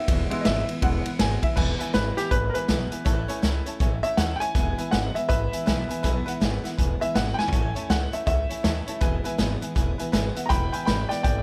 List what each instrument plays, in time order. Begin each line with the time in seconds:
Already playing: upright piano E5
0.08 upright bass E1, steel-string acoustic guitar E2 B2 E3 G#3 B3 E4, kick, ride
0.30 steel-string acoustic guitar E3 G#3 B3 E4, upright piano G#3 B3 E4, muted upright bass stroke, ride
0.41 upright piano D#5, snare, ride
0.45 upright bass G#1, steel-string acoustic guitar E2 B2 E3 G#3 B3 E4, upright piano E5
0.68 steel-string acoustic guitar E3 G#3 B3 E4, muted upright bass stroke, ride
0.82 upright bass E1, steel-string acoustic guitar E3 G#3 B3 E4, upright piano G#3 B3 E4 F#5, kick, ride
1.05 steel-string acoustic guitar E3 G#3 B3 E4, muted upright bass stroke, ride
1.19 upright bass G#1, steel-string acoustic guitar E2 B2 E3 G#3 B3 E4, upright piano G#5, snare, ride
1.42 steel-string acoustic guitar E3 G#3 B3 E4, upright piano E5, kick, ride
1.56 upright bass E1, steel-string acoustic guitar E2 B2 E3 G#3 B3 E4, upright piano B4 E5 G#5, kick, crash
1.79 steel-string acoustic guitar E3 G#3 B3 E4, upright piano B4 E5 G#5, closed hi-hat
1.93 upright bass G#1, steel-string acoustic guitar E2 B2 E3 G#3 B3 E4, upright piano B4 E5 G#5, snare, closed hi-hat
2.16 steel-string acoustic guitar E3 G#3 B3 E4, upright piano G4 B4 E5 G#5, muted upright bass stroke, snare, closed hi-hat
2.31 upright bass G#1, steel-string acoustic guitar E3 G#3 B3 E4, upright piano B4 E5 G#5, kick, closed hi-hat
2.50 upright piano A#4
2.54 steel-string acoustic guitar E3 G#3 B3 E4, upright piano B4 E5 G#5, closed hi-hat
2.68 upright bass B1, steel-string acoustic guitar E2 B2 E3 G#3 B3 E4, upright piano B4 E5 G#5, snare, closed hi-hat
2.91 steel-string acoustic guitar E3 G#3 B3 E4, upright piano B4 E5 G#5, muted upright bass stroke, closed hi-hat
3.05 upright bass A1, steel-string acoustic guitar A2 E3 A3 C#4 E4, upright piano C#5 E5 A5, kick, closed hi-hat
3.28 steel-string acoustic guitar A3 C#4 E4, upright piano C#5 E5 G#5, muted upright bass stroke, closed hi-hat
3.42 upright bass C#2, steel-string acoustic guitar A2 E3 A3 C#4 E4, upright piano C#5 E5 A5, snare, closed hi-hat
3.66 steel-string acoustic guitar A3 C#4 E4, upright piano C#5 E5 A5, closed hi-hat
3.80 upright bass A1, steel-string acoustic guitar E3 A3 C#4 E4, upright piano C#5 E5 G#5, kick, closed hi-hat
4.03 steel-string acoustic guitar A3 C#4 E4, upright piano C#5 E5 A5, muted upright bass stroke, closed hi-hat
4.17 upright bass D#2, steel-string acoustic guitar A2 E3 A3 C#4 E4, upright piano C#5 E5 F#5 A5, snare, closed hi-hat
4.36 upright piano G5
4.40 steel-string acoustic guitar A3 C#4 E4, upright piano C#5 E5 G#5 A5, muted upright bass stroke, closed hi-hat
4.55 upright bass E1, steel-string acoustic guitar E2 B2 E3 G#3 B3 E4, upright piano B4 E5 G#5, kick, closed hi-hat
4.78 steel-string acoustic guitar E3 G#3 B3 E4, upright piano B4 E5 G#5, muted upright bass stroke, closed hi-hat
4.91 upright bass G#1, steel-string acoustic guitar E2 B2 E3 G#3 B3 E4, upright piano B4 E5 F#5 G#5, snare, closed hi-hat
5.14 steel-string acoustic guitar E3 G#3 B3 E4, upright piano B4 E5 G#5, closed hi-hat
5.28 upright bass G#1, steel-string acoustic guitar E3 G#3 B3 E4, upright piano B4 E5 G#5, kick, closed hi-hat
5.52 steel-string acoustic guitar E3 G#3 B3 E4, upright piano B4 E5 G#5, muted upright bass stroke, closed hi-hat
5.66 upright bass B1, steel-string acoustic guitar E2 B2 E3 G#3 B3 E4, upright piano B4 E5 G#5, snare, closed hi-hat
5.89 steel-string acoustic guitar E3 G#3 B3 E4, upright piano B4 E5 G#5, muted upright bass stroke, closed hi-hat
6.03 upright bass B1, steel-string acoustic guitar E2 B2 E3 G#3 B3 E4, upright piano B4 E5 G#5, kick, closed hi-hat
6.26 steel-string acoustic guitar E3 G#3 B3 E4, upright piano B4 E5 F#5, closed hi-hat
6.40 upright bass G#1, steel-string acoustic guitar E2 B2 E3 G#3 B3 E4, upright piano B4 E5 G#5, snare, closed hi-hat
6.63 steel-string acoustic guitar E3 G#3 B3 E4, upright piano B4 E5 F#5, snare, closed hi-hat
6.77 upright bass E1, steel-string acoustic guitar E3 G#3 B3 E4, upright piano B4 E5 G#5, kick, closed hi-hat
7.00 steel-string acoustic guitar E3 G#3 B3 E4, upright piano B4 E5 G#5, muted upright bass stroke, closed hi-hat
7.14 upright bass G#1, steel-string acoustic guitar E2 B2 E3 G#3 B3 E4, upright piano B4 E5 F#5 G#5, snare, closed hi-hat
7.34 upright piano B4 G5
7.38 steel-string acoustic guitar E3 G#3 B3 E4, upright piano E5 G#5, muted upright bass stroke, snare
7.48 upright piano C#5, floor tom
7.52 upright bass A1, steel-string acoustic guitar A2 E3 A3 C#4 E4, upright piano E5 A5, kick, closed hi-hat
7.75 steel-string acoustic guitar A3 C#4 E4, upright piano C#5 E5 A5, muted upright bass stroke, closed hi-hat
7.89 upright bass C#2, steel-string acoustic guitar A2 E3 A3 C#4 E4, upright piano C#5 E5 F#5 G#5, snare, closed hi-hat
8.12 steel-string acoustic guitar A3 C#4 E4, upright piano C#5 E5 A5, closed hi-hat
8.26 upright bass C#2, steel-string acoustic guitar E3 A3 C#4 E4, upright piano C#5 E5 F#5, kick, closed hi-hat
8.49 steel-string acoustic guitar A3 C#4 E4, upright piano C#5 E5 G#5, closed hi-hat
8.63 upright bass D#2, steel-string acoustic guitar A2 E3 A3 C#4 E4, upright piano C#5 E5 A5, snare, closed hi-hat
8.87 steel-string acoustic guitar A3 C#4 E4, upright piano C#5 E5 A5, muted upright bass stroke, closed hi-hat
9.01 upright bass E1, steel-string acoustic guitar E2 B2 E3 G#3 B3 E4, upright piano B4 E5 G#5, kick, closed hi-hat
9.24 steel-string acoustic guitar E3 G#3 B3 E4, upright piano B4 E5 G#5, muted upright bass stroke, closed hi-hat
9.38 upright bass G#1, steel-string acoustic guitar E2 B2 E3 G#3 B3 E4, upright piano B4 E5 G#5, snare, closed hi-hat
9.61 steel-string acoustic guitar E3 G#3 B3 E4, upright piano B4 E5 G#5, muted upright bass stroke, closed hi-hat
9.75 upright bass E1, steel-string acoustic guitar E3 G#3 B3 E4, upright piano B4 E5 G#5, kick, closed hi-hat
9.98 steel-string acoustic guitar E3 G#3 B3 E4, upright piano B4 E5 G#5, muted upright bass stroke, closed hi-hat
10.12 upright bass G#1, steel-string acoustic guitar E2 B2 E3 G#3 B3 E4, upright piano B4 E5 G#5, snare, closed hi-hat
10.35 steel-string acoustic guitar E3 G#3 B3 E4, upright piano B4 E5 F#5, muted upright bass stroke, closed hi-hat
10.46 steel-string acoustic guitar E2 B2, upright piano B4 G5 A#5 B5
10.50 upright bass E1, steel-string acoustic guitar E3 G#3 B3 E4, upright piano E5 B5, kick, closed hi-hat
10.72 steel-string acoustic guitar E3 G#3 B3 E4, upright piano B4 E5 G5 G#5 B5, muted upright bass stroke, closed hi-hat
10.85 upright bass G#1, steel-string acoustic guitar E2 B2 E3 G#3 B3 E4, upright piano B4 E5 G5 G#5 B5, snare, closed hi-hat
11.09 steel-string acoustic guitar E3 G#3 B3 E4, upright piano B4 D5 E5 G5 B5, muted upright bass stroke, snare, closed hi-hat
11.23 upright bass G#1, steel-string acoustic guitar E3 G#3 B3 E4, upright piano B4 D5 E5 G5 G#5, kick, closed hi-hat